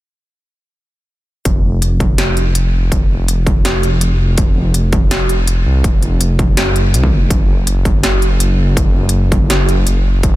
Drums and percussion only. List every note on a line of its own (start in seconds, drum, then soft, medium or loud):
1.45 kick loud
1.45 closed hi-hat medium
1.82 closed hi-hat medium
2.00 kick medium
2.00 closed hi-hat soft
2.18 snare loud
2.18 closed hi-hat medium
2.37 closed hi-hat soft
2.55 closed hi-hat medium
2.92 kick loud
2.92 closed hi-hat medium
3.28 closed hi-hat medium
3.47 kick medium
3.47 closed hi-hat soft
3.65 snare loud
3.65 closed hi-hat medium
3.83 closed hi-hat soft
4.01 closed hi-hat medium
4.38 kick loud
4.38 closed hi-hat medium
4.74 closed hi-hat medium
4.92 kick medium
4.92 closed hi-hat soft
5.11 snare loud
5.11 closed hi-hat medium
5.29 closed hi-hat soft
5.47 closed hi-hat medium
5.84 kick loud
5.84 closed hi-hat medium
6.03 closed hi-hat soft
6.21 closed hi-hat medium
6.39 kick medium
6.39 closed hi-hat soft
6.57 snare loud
6.57 closed hi-hat medium
6.76 closed hi-hat soft
6.94 closed hi-hat medium
7.04 kick medium
7.30 kick loud
7.30 closed hi-hat medium
7.67 closed hi-hat medium
7.85 kick medium
7.85 closed hi-hat soft
8.03 snare loud
8.03 closed hi-hat medium
8.22 closed hi-hat soft
8.40 closed hi-hat medium
8.77 kick loud
8.77 closed hi-hat medium
9.09 closed hi-hat medium
9.32 kick medium
9.32 closed hi-hat soft
9.50 snare loud
9.50 closed hi-hat medium
9.69 closed hi-hat soft
9.87 closed hi-hat medium
10.23 kick loud
10.23 closed hi-hat medium